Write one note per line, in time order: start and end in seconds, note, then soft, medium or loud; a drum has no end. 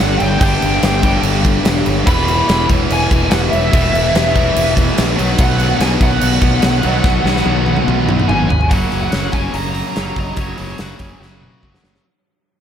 0.00 0.18 G1 loud
0.00 0.38 G2 medium
0.00 0.39 D3 loud
0.00 0.39 D3 medium
0.00 0.39 G3 medium
0.00 0.40 G3 loud
0.00 0.41 B3 loud
0.00 2.02 B3 medium
0.00 0.40 D4 loud
0.00 2.02 D4 medium
0.00 2.02 G4 medium
0.00 2.02 B4 medium
0.00 0.14 F#5 loud
0.18 0.38 G1 medium
0.18 0.38 G5 medium
0.18 crash medium
0.39 0.58 G1 loud
0.39 1.01 G2 medium
0.39 2.05 G2 loud
0.39 2.05 D3 medium
0.39 1.01 D3 loud
0.39 2.06 G3 loud
0.39 1.01 G3 medium
0.39 2.07 B3 loud
0.39 1.19 G5 medium
0.39 kick loud
0.39 crash medium
0.43 2.06 D4 loud
0.62 0.79 G1 loud
0.62 crash medium
0.82 1.17 G1 loud
0.82 snare loud
0.82 crash medium
1.02 2.04 G2 medium
1.02 2.06 D3 medium
1.02 2.05 G3 medium
1.02 kick medium
1.02 crash medium
1.23 1.57 G1 loud
1.23 crash medium
1.45 kick medium
1.45 crash medium
1.65 1.82 E1 loud
1.65 snare loud
1.65 crash medium
1.86 2.03 G1 medium
1.86 crash medium
2.05 2.41 E1 loud
2.05 2.69 E2 medium
2.05 2.66 B2 medium
2.05 3.71 E3 loud
2.05 2.65 E3 loud
2.05 3.71 G#3 loud
2.05 5.14 B3 medium
2.05 3.74 B3 loud
2.05 5.14 E4 medium
2.05 3.72 E4 loud
2.05 5.14 G#4 medium
2.05 5.14 B4 medium
2.05 2.24 B5 loud
2.05 kick loud
2.05 crash medium
2.26 2.65 B5 loud
2.26 crash medium
2.49 2.66 E1 medium
2.49 snare loud
2.49 crash medium
2.66 3.69 E2 medium
2.66 3.71 B2 medium
2.66 3.70 E3 medium
2.66 kick medium
2.66 crash medium
2.70 2.86 E1 medium
2.90 3.07 E1 loud
2.90 3.31 G#5 loud
2.90 crash medium
3.11 3.28 E1 medium
3.11 kick medium
3.11 crash medium
3.31 3.49 E1 medium
3.31 3.37 F#5 loud
3.31 snare loud
3.31 crash medium
3.50 3.69 E1 medium
3.50 4.71 E5 medium
3.50 crash medium
3.70 3.90 E1 loud
3.70 4.32 E2 medium
3.70 4.33 B2 loud
3.70 5.16 E3 medium
3.70 4.30 E3 loud
3.70 5.16 G#3 medium
3.70 5.18 B3 loud
3.70 kick loud
3.70 crash medium
3.75 5.17 E4 loud
3.94 4.11 E1 medium
3.94 crash medium
4.14 4.48 E1 medium
4.14 snare loud
4.14 crash medium
4.31 5.14 B2 medium
4.31 5.15 E3 medium
4.35 5.17 E2 medium
4.35 kick medium
4.35 crash medium
4.56 4.90 E1 medium
4.56 crash medium
4.77 kick medium
4.77 crash medium
4.98 5.15 A#1 loud
4.98 snare loud
4.98 crash medium
5.15 5.75 B2 loud
5.15 6.80 B2 loud
5.15 6.82 D#3 loud
5.15 5.78 F#3 loud
5.15 6.83 F#3 medium
5.15 8.67 B3 medium
5.15 6.83 B3 loud
5.15 5.79 B3 loud
5.15 8.67 D#4 medium
5.15 8.67 F#4 medium
5.15 8.67 B4 medium
5.19 5.36 B1 medium
5.19 6.83 D#4 loud
5.19 crash medium
5.38 5.73 B1 loud
5.38 5.81 F#5 loud
5.38 kick loud
5.38 crash medium
5.60 crash medium
5.76 5.97 B1 medium
5.76 6.80 B2 medium
5.76 6.84 F#3 medium
5.80 6.82 B3 loud
5.80 5.87 G#5 loud
5.80 snare loud
5.80 crash medium
6.01 6.18 B1 medium
6.01 8.26 F#5 medium
6.01 kick loud
6.01 crash medium
6.21 6.39 B1 loud
6.21 crash medium
6.41 6.59 B1 loud
6.41 kick medium
6.41 crash medium
6.62 6.80 B1 loud
6.62 snare loud
6.62 crash medium
6.82 7.01 B1 medium
6.82 8.47 B2 loud
6.82 7.44 B2 loud
6.82 8.48 D#3 medium
6.82 8.48 F#3 loud
6.82 7.45 F#3 loud
6.82 8.49 B3 loud
6.82 8.49 D#4 loud
6.82 crash medium
6.86 7.46 B3 loud
7.04 7.22 B1 medium
7.04 kick loud
7.04 snare medium
7.25 7.42 B1 loud
7.25 snare medium
7.36 snare medium
7.45 7.80 B1 loud
7.45 8.48 B2 medium
7.45 8.49 F#3 medium
7.45 8.50 B3 loud
7.45 high tom medium
7.66 high tom medium
7.77 mid tom medium
7.87 8.22 B1 loud
7.87 mid tom medium
8.09 mid tom loud
8.20 mid tom medium
8.28 8.46 G#1 loud
8.28 8.70 G#5 loud
8.28 mid tom loud
8.50 8.68 G#1 medium
8.50 floor tom loud
8.61 floor tom medium
8.68 8.85 F#1 medium
8.68 9.51 F#2 medium
8.68 9.34 F#2 medium
8.68 9.10 C#3 medium
8.68 8.93 F#3 medium
8.68 8.92 A#3 medium
8.68 8.90 C#4 medium
8.68 9.00 F#5 medium
8.68 kick loud
8.68 open hi-hat medium
8.72 9.32 C#3 medium
8.72 9.31 F#3 medium
8.91 9.06 F#1 medium
8.91 9.12 F#3 medium
8.91 9.13 A#3 medium
8.91 9.13 C#4 medium
8.91 open hi-hat soft
9.01 9.33 F#5 medium
9.11 9.27 F#1 medium
9.11 9.51 C#3 medium
9.11 9.34 F#3 medium
9.11 9.33 A#3 medium
9.11 9.31 C#4 medium
9.11 snare loud
9.11 open hi-hat medium
9.31 9.47 F#1 medium
9.31 9.93 F#2 medium
9.31 9.94 C#3 medium
9.31 9.97 F#3 medium
9.31 9.53 F#3 medium
9.31 9.53 A#3 medium
9.31 9.54 C#4 medium
9.31 9.54 G#5 medium
9.31 kick medium
9.31 open hi-hat soft
9.52 9.82 F#1 medium
9.52 10.35 F#2 medium
9.52 9.93 C#3 medium
9.52 9.76 F#3 medium
9.52 9.74 A#3 medium
9.52 9.73 C#4 medium
9.52 11.59 A#5 medium
9.52 open hi-hat medium
9.73 9.95 F#3 medium
9.73 9.96 A#3 medium
9.73 9.97 C#4 medium
9.73 open hi-hat soft
9.94 10.10 F#1 medium
9.94 10.36 F#2 medium
9.94 10.35 C#3 medium
9.94 10.36 C#3 medium
9.94 10.36 F#3 medium
9.94 10.40 F#3 medium
9.94 10.36 A#3 medium
9.94 10.36 C#4 medium
9.94 snare loud
9.94 open hi-hat medium
10.16 10.31 F#1 medium
10.16 10.38 D#5 medium
10.16 kick medium
10.16 open hi-hat soft
10.36 10.51 F#1 medium
10.36 10.78 F#2 medium
10.36 10.98 F#2 medium
10.36 10.78 C#3 medium
10.36 10.99 C#3 loud
10.36 10.58 F#3 loud
10.36 10.57 A#3 medium
10.36 10.56 C#4 loud
10.36 kick loud
10.36 open hi-hat medium
10.40 10.97 F#3 medium
10.40 10.80 C#5 medium
10.58 10.73 F#1 medium
10.58 10.78 F#3 medium
10.58 10.79 A#3 medium
10.58 10.80 C#4 medium
10.58 open hi-hat soft
10.78 10.93 F#1 medium
10.78 11.18 C#3 medium
10.78 11.01 F#3 medium
10.78 11.00 A#3 medium
10.78 10.99 C#4 medium
10.78 snare loud
10.78 open hi-hat medium
10.82 11.02 F#4 medium
10.98 11.14 F#1 medium
10.98 11.60 F#2 medium
10.98 11.62 C#3 medium
10.98 11.61 F#3 medium
10.98 11.19 F#3 soft
10.98 11.19 A#3 medium
10.98 11.20 C#4 medium
10.98 11.22 G#4 medium
10.98 kick medium
10.98 open hi-hat medium
11.19 11.48 F#1 medium
11.19 11.62 F#2 medium
11.19 11.61 C#3 medium
11.19 11.41 F#3 medium
11.19 11.39 A#3 medium
11.19 11.39 C#4 medium
11.19 11.41 F#4 medium
11.19 snare medium
11.40 11.61 F#3 medium
11.40 11.61 A#3 medium
11.40 11.62 C#4 medium
11.40 11.93 F#4 medium
11.40 mid tom medium
11.61 11.77 F#1 medium
11.61 12.03 F#2 medium
11.61 12.03 C#3 medium
11.61 12.03 F#3 medium
11.61 12.04 F#3 medium
11.61 12.03 A#3 medium
11.61 12.04 C#4 medium
11.61 kick medium
11.75 snare medium
11.84 11.98 F#1 medium
11.84 snare medium
11.95 snare medium